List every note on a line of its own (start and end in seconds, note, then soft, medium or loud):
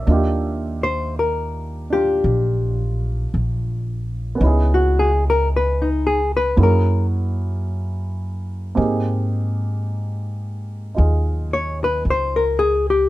0.00 0.18 E5 soft
0.06 2.19 D#2 medium
0.06 4.41 A#3 soft
0.06 1.89 D4 soft
0.06 4.39 D#4 soft
0.10 1.91 F4 soft
0.10 4.44 G4 soft
0.83 1.15 C5 medium
1.19 1.87 A#4 medium
1.90 4.42 D4 soft
1.90 4.43 F4 soft
1.90 3.30 G4 medium
2.24 3.28 A#1 medium
3.34 4.37 A#1 medium
4.35 6.56 B3 soft
4.35 6.56 C#4 soft
4.41 6.54 C#2 medium
4.41 6.58 D#4 soft
4.41 6.56 E4 soft
4.46 6.57 G#4 soft
4.74 5.11 F#4 medium
4.99 5.23 G#4 medium
5.30 5.48 A#4 medium
5.56 5.88 B4 medium
5.82 6.19 D#4 soft
6.07 6.31 G#4 medium
6.37 6.56 B4 medium
6.56 8.73 F#2 medium
6.56 8.73 A#3 soft
6.56 8.77 C#4 soft
6.56 8.77 E4 soft
6.56 8.77 F#4 soft
6.56 8.76 G#4 soft
6.63 7.06 A#4 medium
8.75 10.92 G#2 medium
8.75 13.09 A#3 soft
8.75 13.09 C4 soft
8.75 10.93 D#4 soft
8.75 13.09 G4 soft
8.75 10.96 G#4 soft
10.95 12.02 D#2 medium
10.95 13.09 D#4 soft
10.95 13.09 F4 soft
10.95 13.09 G#4 soft
11.53 11.79 C#5 medium
11.84 12.03 B4 medium
12.05 13.09 C#2 medium
12.10 12.43 C5 medium
12.36 12.74 A#4 medium
12.59 12.86 G#4 medium
12.90 13.09 G4 medium